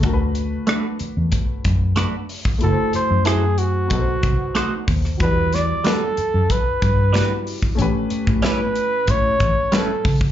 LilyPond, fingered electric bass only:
\new Staff \with { instrumentName = "Fingered electric bass" } { \clef bass \time 4/4 \key d \major \tempo 4 = 93 d,4 r8. e,16 r8 fis,8. r8. | fis,,16 r8 fis,4~ fis,16 b,,8 c,16 r8. dis,8 | e,4 r8. fis,16 r8 g,8. r8. | a,,16 r8 a,4~ a,16 a,8 a,,16 r8. cis,8 | }